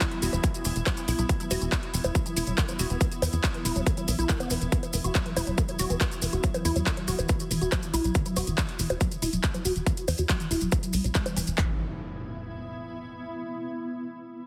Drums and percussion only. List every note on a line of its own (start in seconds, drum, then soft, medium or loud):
0.01 kick loud
0.01 clap loud
0.01 closed hi-hat medium
0.01 maracas medium
0.11 closed hi-hat medium
0.22 open hi-hat loud
0.22 maracas medium
0.33 closed hi-hat medium
0.33 high bongo soft
0.33 maracas soft
0.44 kick loud
0.44 closed hi-hat loud
0.44 maracas medium
0.54 closed hi-hat medium
0.54 maracas soft
0.65 open hi-hat loud
0.65 maracas loud
0.76 closed hi-hat medium
0.76 maracas soft
0.86 kick loud
0.86 clap loud
0.86 closed hi-hat medium
0.86 high bongo medium
0.86 maracas soft
0.97 closed hi-hat medium
0.97 maracas soft
1.08 open hi-hat loud
1.08 maracas medium
1.19 closed hi-hat medium
1.19 maracas soft
1.29 kick loud
1.29 closed hi-hat medium
1.29 maracas medium
1.40 closed hi-hat soft
1.40 maracas soft
1.51 open hi-hat loud
1.51 high bongo soft
1.51 maracas loud
1.61 closed hi-hat medium
1.61 maracas soft
1.72 kick loud
1.72 clap loud
1.72 closed hi-hat medium
1.72 maracas medium
1.83 closed hi-hat medium
1.94 open hi-hat loud
1.94 maracas loud
2.04 closed hi-hat medium
2.04 high bongo medium
2.04 maracas soft
2.15 kick loud
2.15 closed hi-hat medium
2.15 maracas medium
2.26 closed hi-hat medium
2.26 maracas soft
2.37 open hi-hat loud
2.37 maracas loud
2.47 closed hi-hat medium
2.47 maracas soft
2.58 kick loud
2.58 clap loud
2.58 closed hi-hat medium
2.58 maracas medium
2.68 closed hi-hat soft
2.68 high bongo soft
2.68 maracas soft
2.79 open hi-hat loud
2.79 maracas loud
2.90 closed hi-hat medium
2.90 maracas soft
3.01 kick loud
3.01 closed hi-hat medium
3.01 maracas medium
3.12 closed hi-hat soft
3.12 maracas soft
3.22 open hi-hat loud
3.22 high bongo medium
3.22 maracas medium
3.33 closed hi-hat medium
3.33 maracas soft
3.44 kick loud
3.44 clap loud
3.44 closed hi-hat medium
3.44 maracas soft
3.54 closed hi-hat soft
3.65 open hi-hat loud
3.65 maracas loud
3.76 closed hi-hat soft
3.76 maracas soft
3.87 kick loud
3.87 closed hi-hat medium
3.87 high bongo soft
3.87 maracas medium
3.97 closed hi-hat medium
3.97 maracas soft
4.08 open hi-hat loud
4.08 maracas loud
4.19 closed hi-hat medium
4.19 maracas soft
4.29 kick loud
4.29 clap loud
4.29 closed hi-hat medium
4.29 maracas medium
4.40 closed hi-hat soft
4.40 high bongo medium
4.40 maracas soft
4.50 open hi-hat loud
4.50 maracas medium
4.61 closed hi-hat medium
4.61 maracas soft
4.72 kick loud
4.72 closed hi-hat medium
4.72 maracas medium
4.83 closed hi-hat medium
4.83 high bongo soft
4.83 maracas soft
4.93 open hi-hat loud
4.93 maracas loud
5.04 closed hi-hat medium
5.04 maracas soft
5.15 kick loud
5.15 clap loud
5.15 closed hi-hat medium
5.15 maracas soft
5.26 closed hi-hat medium
5.37 open hi-hat loud
5.37 high bongo medium
5.37 maracas loud
5.47 closed hi-hat soft
5.47 maracas soft
5.58 kick loud
5.58 closed hi-hat medium
5.58 maracas medium
5.68 closed hi-hat medium
5.68 maracas soft
5.79 open hi-hat loud
5.79 maracas loud
5.90 closed hi-hat medium
5.90 maracas soft
6.01 kick loud
6.01 clap loud
6.01 closed hi-hat medium
6.01 high bongo soft
6.01 maracas soft
6.12 closed hi-hat soft
6.12 maracas soft
6.22 open hi-hat loud
6.22 maracas medium
6.32 closed hi-hat medium
6.32 maracas soft
6.43 kick loud
6.43 closed hi-hat medium
6.43 maracas medium
6.54 closed hi-hat medium
6.54 high bongo medium
6.54 maracas soft
6.65 open hi-hat loud
6.65 maracas medium
6.76 closed hi-hat medium
6.76 maracas soft
6.86 kick loud
6.86 clap loud
6.86 closed hi-hat medium
6.86 maracas medium
6.97 closed hi-hat medium
7.08 open hi-hat loud
7.08 maracas medium
7.19 closed hi-hat medium
7.19 high bongo soft
7.19 maracas soft
7.28 kick loud
7.28 closed hi-hat medium
7.28 maracas medium
7.40 closed hi-hat medium
7.40 maracas soft
7.51 open hi-hat loud
7.51 maracas medium
7.62 closed hi-hat medium
7.62 maracas soft
7.72 kick loud
7.72 clap loud
7.72 closed hi-hat medium
7.72 high bongo medium
7.72 maracas soft
7.83 closed hi-hat medium
7.83 maracas soft
7.94 open hi-hat loud
7.94 maracas medium
8.04 closed hi-hat medium
8.04 maracas soft
8.15 kick loud
8.15 closed hi-hat medium
8.15 maracas soft
8.26 closed hi-hat medium
8.26 maracas soft
8.36 open hi-hat loud
8.36 high bongo soft
8.36 maracas medium
8.47 closed hi-hat medium
8.47 maracas soft
8.58 kick loud
8.58 clap loud
8.58 closed hi-hat loud
8.58 maracas medium
8.69 closed hi-hat medium
8.79 open hi-hat loud
8.79 maracas medium
8.90 closed hi-hat medium
8.90 high bongo medium
8.90 maracas soft
9.01 kick loud
9.01 closed hi-hat medium
9.01 maracas soft
9.12 closed hi-hat medium
9.12 maracas soft
9.22 open hi-hat loud
9.22 maracas medium
9.33 closed hi-hat medium
9.33 maracas soft
9.44 kick loud
9.44 clap loud
9.44 closed hi-hat loud
9.44 maracas soft
9.54 closed hi-hat medium
9.54 high bongo soft
9.54 maracas soft
9.65 open hi-hat loud
9.65 maracas medium
9.76 closed hi-hat medium
9.76 maracas soft
9.87 kick loud
9.87 closed hi-hat loud
9.87 maracas soft
9.97 closed hi-hat medium
9.97 maracas soft
10.08 open hi-hat loud
10.08 high bongo medium
10.08 maracas medium
10.18 closed hi-hat medium
10.18 maracas soft
10.29 kick loud
10.29 clap loud
10.29 closed hi-hat loud
10.29 maracas medium
10.40 closed hi-hat medium
10.40 maracas soft
10.51 open hi-hat loud
10.51 maracas medium
10.61 closed hi-hat medium
10.61 maracas soft
10.72 kick loud
10.72 closed hi-hat loud
10.72 high bongo soft
10.72 maracas soft
10.83 closed hi-hat medium
10.83 maracas soft
10.93 open hi-hat loud
10.93 maracas medium
11.04 closed hi-hat medium
11.04 maracas soft
11.15 kick loud
11.15 clap loud
11.15 closed hi-hat loud
11.15 maracas soft
11.26 closed hi-hat medium
11.26 high bongo medium
11.26 maracas soft
11.37 open hi-hat loud
11.37 maracas medium
11.47 closed hi-hat medium
11.47 maracas soft
11.58 kick loud
11.58 clap medium